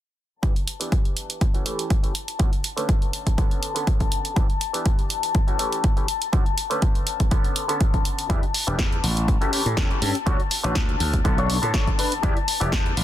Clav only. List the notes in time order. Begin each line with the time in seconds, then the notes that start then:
0.43 E3 B3 D4 G4
0.80 E3 B3 D4 G4
1.54 E3 A3 C#4 F#4
1.65 E3 A3 C#4 G4
2.03 E3 A3 C#4 G4
2.39 D3 A3 C#4 F#4
2.76 D3 A3 C#4 B4
3.38 D3 B3 C#4 A4
3.75 D3 B3 C#4 A4
4.36 E3 B3 D4 G4
4.73 E3 B3 D4 G4
5.47 E3 A3 C#4 F#4
5.59 E3 A3 C#4 G4
5.97 E3 A3 C#4 G4
6.33 D3 A3 C#4 F#4
6.70 D3 A3 C#4 B4
7.31 D3 B3 C#4 A4
7.68 D3 B3 C#4 A4
8.30 E3 B3 D4 G4
8.67 E3 G3 B3 D4
9.41 E3 A3 C#4 F#4
9.52 E3 A3 C#4 G4
9.90 E3 A3 C#4 G4
10.26 D3 A3 C#4 F#4
10.63 D3 A3 B4 C#5
11.24 D3 B3 C#4 A4
11.62 D3 B3 A4 C#5
12.23 E3 B3 D4 G4
12.60 E3 B3 D4 G4